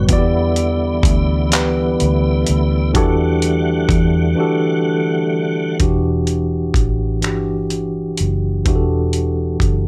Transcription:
Already playing: A2 G3 B3 F#4 B4
0.08 E2 D3 E3 G3 B3 E4 F#4, kick, closed hi-hat
0.13 D5
0.18 G4
0.56 closed hi-hat
1.03 D2, kick, closed hi-hat
1.50 E3 B3 G4, clap, closed hi-hat
1.55 B4
2.00 D2, closed hi-hat
2.47 D2, closed hi-hat
2.93 E2 E3 G3 A3 D4 F#4 G4 F#5, kick, closed hi-hat
2.97 A4
3.42 closed hi-hat
3.89 E2, kick, closed hi-hat
4.35 E3 D4 F#4 G4
4.40 A4
5.79 E1 E3 D4 F#4, kick, closed hi-hat
5.83 G4
6.27 closed hi-hat
6.74 A1, kick, closed hi-hat
7.22 G1 E3 D4 F#4, finger snap, closed hi-hat
7.26 G4
7.70 closed hi-hat
8.18 F#1, closed hi-hat
8.65 E1 E3 D4 F#4, kick, closed hi-hat
8.69 G4
8.75 A4
9.13 closed hi-hat
9.60 F#1, kick, closed hi-hat

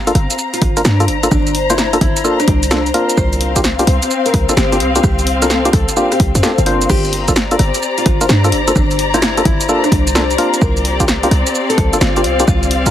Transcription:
Already playing: G1 C4 C5 F5 A#5
0.07 A#3 D4 F4 A4, closed hi-hat, shaker
0.15 G1, cross-stick, open hi-hat
0.30 closed hi-hat, shaker
0.38 shaker
0.53 F4, closed hi-hat, shaker
0.62 G1, kick, cross-stick, open hi-hat
0.77 A#3 D4 F4 A#4, closed hi-hat, shaker
0.85 G2 D4, snare, shaker
1.00 A#3 D4 F4 A4, closed hi-hat, shaker
1.08 G1, open hi-hat
1.23 A#3 D4 F4 A4, closed hi-hat, shaker
1.31 G1 D4, kick, cross-stick, shaker
1.47 closed hi-hat, shaker
1.55 open hi-hat
1.70 A#3 D4 E4 F4 C5, closed hi-hat, shaker
1.78 snare, shaker
1.93 A#3 D4 F4 A4, closed hi-hat, shaker
2.01 G1 E4, kick, open hi-hat
2.17 closed hi-hat, shaker
2.24 A#3 D4 F4 A4, shaker
2.40 D4, cross-stick, closed hi-hat, shaker
2.48 C2, kick, open hi-hat
2.63 closed hi-hat, shaker
2.71 A#3 D4 F4 A4, snare, shaker
2.86 closed hi-hat, shaker
2.94 A#3 C4 D4 F4 A#4, open hi-hat
3.09 closed hi-hat, shaker
3.17 C2 C5 F5, kick, cross-stick, shaker
3.33 closed hi-hat, shaker
3.41 open hi-hat
3.56 A#3 D4 F4 G4, kick, closed hi-hat, shaker
3.64 snare, shaker
3.79 A#3 D4 F4 G4, closed hi-hat, shaker
3.87 C2, open hi-hat
4.03 closed hi-hat, shaker
4.11 shaker
4.26 A#4, closed hi-hat, shaker
4.34 C2, kick, cross-stick, open hi-hat
4.49 A#3 D4 F4 A4, closed hi-hat, shaker
4.57 G1 G4, snare, shaker
4.72 A#3 D4 F4 G4, closed hi-hat, shaker
4.80 C2, open hi-hat
4.96 A#3 D4 F4 G4, closed hi-hat, shaker
5.03 C2 G4, kick, cross-stick, shaker
5.19 closed hi-hat, shaker
5.27 open hi-hat
5.42 A#3 D4 F4 A4 A#4, closed hi-hat, shaker
5.50 snare, shaker
5.65 A#3 D4 F4 G4, closed hi-hat, shaker
5.73 C2 A4, kick, cross-stick, open hi-hat
5.89 closed hi-hat, shaker
5.97 A#3 D4 F4 G4, shaker
6.12 G4, cross-stick, closed hi-hat, shaker
6.20 C2, kick, open hi-hat
6.35 F2, closed hi-hat, shaker
6.43 A#3 D4 F4 G4 A4, snare, shaker
6.58 G1, closed hi-hat, shaker
6.66 A#3 D4 F4 C5, open hi-hat
6.82 closed hi-hat, shaker
6.89 G1 G4 C5, kick, cross-stick, crash, shaker
7.05 closed hi-hat, shaker
7.11 A#5, open hi-hat
7.28 A#3 D4 F4 A4, kick, closed hi-hat, shaker
7.35 D5, snare, shaker
7.51 A#3 D4 F4 A4, closed hi-hat, shaker
7.59 G1, cross-stick, open hi-hat
7.74 closed hi-hat, shaker
7.82 shaker
7.98 F4, closed hi-hat, shaker
8.06 G1, kick, cross-stick, open hi-hat
8.21 A#3 D4 F4 A#4, closed hi-hat, shaker
8.29 G2 D4, snare, shaker
8.44 A#3 D4 F4 A4, closed hi-hat, shaker
8.52 G1, open hi-hat
8.68 A#3 D4 F4 A4, closed hi-hat, shaker
8.76 G1 D4, kick, cross-stick, shaker
8.91 closed hi-hat, shaker
8.99 open hi-hat
9.14 A#3 D4 E4 F4 C5, closed hi-hat, shaker
9.22 snare, shaker
9.37 A#3 D4 F4 A4, closed hi-hat, shaker
9.45 G1 E4, kick, open hi-hat
9.61 closed hi-hat, shaker
9.69 A#3 D4 F4 A4, shaker
9.84 D4, cross-stick, closed hi-hat, shaker
9.92 C2, kick, open hi-hat
10.07 closed hi-hat, shaker
10.15 A#3 D4 F4 A4, snare, shaker
10.31 closed hi-hat, shaker
10.38 A#3 C4 D4 F4 A#4, open hi-hat
10.54 closed hi-hat, shaker
10.61 C2 A#4, kick, cross-stick, shaker
10.77 closed hi-hat, shaker
10.85 open hi-hat
11.00 A#3 D4 F4 G4, kick, closed hi-hat, shaker
11.08 snare, shaker
11.23 A#3 D4 F4 G4, closed hi-hat, shaker
11.31 C2, cross-stick, open hi-hat
11.47 closed hi-hat, shaker
11.54 F5, shaker
11.70 A4, closed hi-hat, shaker
11.78 C2, kick, cross-stick, open hi-hat
11.93 A#3 D4 F4 A4, closed hi-hat, shaker
12.01 G1 F4, snare, shaker
12.16 A#3 D4 F4 G4, closed hi-hat, shaker
12.24 C2, open hi-hat
12.40 A#3 D4 F4 G4, closed hi-hat, shaker
12.48 C2 F4, kick, cross-stick, shaker
12.63 closed hi-hat, shaker
12.71 open hi-hat
12.86 A#3 D4 F4 G4 A#4, kick, closed hi-hat, shaker

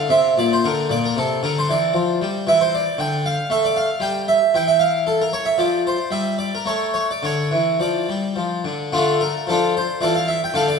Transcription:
0.09 C3 E5
0.38 A#2 D5
0.53 C5
0.65 D3 A#4
0.89 A#2 D5
1.05 A#4
1.17 C3 A4
1.43 D3 A#4
1.59 C5
1.69 E3 D5
1.94 F3
2.21 G3
2.47 E3 E5
2.61 C5
2.75 D5
2.98 D3 G5
3.26 F5
3.50 A3 E5
3.65 D5
3.76 F5
4.00 G3 G5
4.28 E5
4.54 E3 G5
4.68 E5
4.79 F5
5.07 A4
5.21 A#4
5.33 C#5
5.45 E5
5.58 F3 D5
5.87 C5
6.11 G3 E5
6.39 D5
6.55 A#4
6.66 A3 C#5
6.94 C#5
7.11 D5
7.23 D3 C#5
7.51 E3
7.80 F3 D5
8.09 G3
8.36 F3
8.65 D3
8.93 D3 A3 D4 F4
9.21 A#4
9.47 F3 D4 F4 A4
9.77 C5
10.01 E3 F4 A4 D5
10.15 F5
10.28 E5
10.44 G5
10.54 D3 A4 D5 F5
10.68 D5

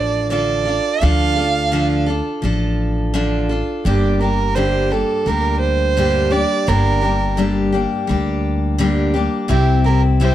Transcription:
Already playing: A1 F3 D4 F4 A4
0.00 D5
0.30 D3 F3 D4 F4 A4 D5
0.65 D4 F4 A4
1.01 D2 D3 F3 D4 F4 A4 F5
1.36 D4 F4 A4
1.72 D3 F3 D4 F4 A4
2.06 D4 F4 A4
2.42 A1 F3 D4 F4 A4
3.14 D3 F3 D4 F4 A4
3.49 D4 F4 A4
3.85 G1 G2 D3 G3 A#3 D4 G4
4.21 G3 A#3 D4 G4 A#4
4.55 G2 D3 G3 A#3 D4 G4 C5
4.91 G3 A#3 D4 G4 A4
5.26 D2 G3 A#3 D4 G4 A#4
5.60 C5
5.97 G2 D3 G3 A#3 D4 G4
6.31 G3 A#3 D4 G4 D5
6.67 G1 G2 D3 G3 A#3 D4 G4 A#4
7.02 G3 A#3 D4 G4
7.37 G2 D3 G3 A#3 D4 G4
7.72 G3 A#3 D4 G4
8.07 D2 G3 A#3 D4 G4
8.78 G2 D3 G3 A#3 D4 G4
9.14 G3 A#3 D4 G4
9.48 C2 C3 G3 C4 E4 G4
9.84 C4 E4 G4 A#4
10.20 C3 G3 C4 E4 G4 C5

